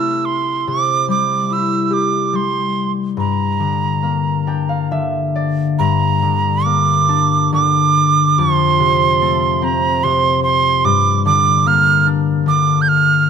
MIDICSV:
0, 0, Header, 1, 3, 480
1, 0, Start_track
1, 0, Tempo, 834492
1, 382, Time_signature, 3, 2, 24, 8
1, 1825, Tempo, 865801
1, 4705, Tempo, 819672
1, 7592, End_track
2, 0, Start_track
2, 0, Title_t, "Tin whistle"
2, 0, Program_c, 0, 75
2, 0, Note_on_c, 0, 88, 69
2, 145, Note_on_c, 0, 84, 72
2, 154, Note_off_c, 0, 88, 0
2, 391, Note_on_c, 0, 86, 83
2, 399, Note_off_c, 0, 84, 0
2, 626, Note_off_c, 0, 86, 0
2, 633, Note_on_c, 0, 86, 71
2, 880, Note_on_c, 0, 88, 76
2, 888, Note_off_c, 0, 86, 0
2, 1067, Note_off_c, 0, 88, 0
2, 1067, Note_on_c, 0, 88, 48
2, 1112, Note_on_c, 0, 86, 65
2, 1121, Note_off_c, 0, 88, 0
2, 1299, Note_off_c, 0, 86, 0
2, 1299, Note_on_c, 0, 86, 47
2, 1356, Note_on_c, 0, 84, 64
2, 1364, Note_off_c, 0, 86, 0
2, 1679, Note_off_c, 0, 84, 0
2, 1836, Note_on_c, 0, 82, 60
2, 2771, Note_off_c, 0, 82, 0
2, 3275, Note_on_c, 0, 82, 74
2, 3756, Note_on_c, 0, 86, 72
2, 3764, Note_off_c, 0, 82, 0
2, 4232, Note_off_c, 0, 86, 0
2, 4245, Note_on_c, 0, 86, 75
2, 4715, Note_on_c, 0, 84, 87
2, 4724, Note_off_c, 0, 86, 0
2, 5451, Note_on_c, 0, 82, 80
2, 5460, Note_off_c, 0, 84, 0
2, 5681, Note_on_c, 0, 84, 78
2, 5690, Note_off_c, 0, 82, 0
2, 5911, Note_off_c, 0, 84, 0
2, 5915, Note_on_c, 0, 84, 90
2, 6158, Note_on_c, 0, 86, 93
2, 6167, Note_off_c, 0, 84, 0
2, 6393, Note_off_c, 0, 86, 0
2, 6397, Note_on_c, 0, 86, 86
2, 6640, Note_on_c, 0, 89, 82
2, 6649, Note_off_c, 0, 86, 0
2, 6871, Note_off_c, 0, 89, 0
2, 7113, Note_on_c, 0, 86, 74
2, 7310, Note_on_c, 0, 91, 57
2, 7319, Note_off_c, 0, 86, 0
2, 7350, Note_on_c, 0, 89, 71
2, 7359, Note_off_c, 0, 91, 0
2, 7592, Note_off_c, 0, 89, 0
2, 7592, End_track
3, 0, Start_track
3, 0, Title_t, "Harp"
3, 0, Program_c, 1, 46
3, 0, Note_on_c, 1, 48, 47
3, 0, Note_on_c, 1, 57, 46
3, 0, Note_on_c, 1, 60, 43
3, 0, Note_on_c, 1, 64, 43
3, 381, Note_off_c, 1, 48, 0
3, 388, Note_on_c, 1, 48, 55
3, 621, Note_on_c, 1, 55, 45
3, 861, Note_off_c, 1, 64, 0
3, 863, Note_on_c, 1, 64, 40
3, 1096, Note_on_c, 1, 67, 46
3, 1163, Note_off_c, 1, 60, 0
3, 1333, Note_off_c, 1, 55, 0
3, 1340, Note_on_c, 1, 55, 41
3, 1823, Note_on_c, 1, 43, 52
3, 1824, Note_off_c, 1, 57, 0
3, 1852, Note_off_c, 1, 48, 0
3, 1852, Note_off_c, 1, 55, 0
3, 2059, Note_on_c, 1, 50, 41
3, 2299, Note_on_c, 1, 58, 43
3, 2346, Note_off_c, 1, 64, 0
3, 2427, Note_off_c, 1, 67, 0
3, 2544, Note_on_c, 1, 62, 38
3, 2547, Note_on_c, 1, 79, 47
3, 2666, Note_on_c, 1, 77, 47
3, 2784, Note_off_c, 1, 50, 0
3, 2789, Note_on_c, 1, 50, 41
3, 2792, Note_on_c, 1, 76, 51
3, 2825, Note_off_c, 1, 77, 0
3, 3035, Note_on_c, 1, 74, 49
3, 3271, Note_off_c, 1, 43, 0
3, 3278, Note_on_c, 1, 43, 51
3, 3302, Note_off_c, 1, 50, 0
3, 3408, Note_off_c, 1, 79, 0
3, 3515, Note_on_c, 1, 50, 46
3, 3747, Note_off_c, 1, 76, 0
3, 3753, Note_off_c, 1, 58, 0
3, 3755, Note_on_c, 1, 58, 44
3, 3992, Note_off_c, 1, 62, 0
3, 3994, Note_on_c, 1, 62, 45
3, 4059, Note_off_c, 1, 74, 0
3, 4232, Note_off_c, 1, 50, 0
3, 4238, Note_on_c, 1, 50, 50
3, 4714, Note_on_c, 1, 41, 55
3, 4736, Note_off_c, 1, 43, 0
3, 4736, Note_off_c, 1, 50, 0
3, 4956, Note_on_c, 1, 48, 49
3, 5203, Note_on_c, 1, 57, 49
3, 5238, Note_off_c, 1, 58, 0
3, 5438, Note_on_c, 1, 60, 53
3, 5594, Note_off_c, 1, 62, 0
3, 5677, Note_off_c, 1, 48, 0
3, 5684, Note_on_c, 1, 48, 56
3, 6158, Note_on_c, 1, 43, 62
3, 6185, Note_off_c, 1, 41, 0
3, 6185, Note_off_c, 1, 48, 0
3, 6396, Note_on_c, 1, 50, 54
3, 6633, Note_on_c, 1, 58, 52
3, 6668, Note_off_c, 1, 57, 0
3, 6869, Note_on_c, 1, 62, 55
3, 7094, Note_off_c, 1, 50, 0
3, 7101, Note_on_c, 1, 50, 50
3, 7195, Note_off_c, 1, 60, 0
3, 7592, Note_off_c, 1, 43, 0
3, 7592, Note_off_c, 1, 50, 0
3, 7592, Note_off_c, 1, 58, 0
3, 7592, Note_off_c, 1, 62, 0
3, 7592, End_track
0, 0, End_of_file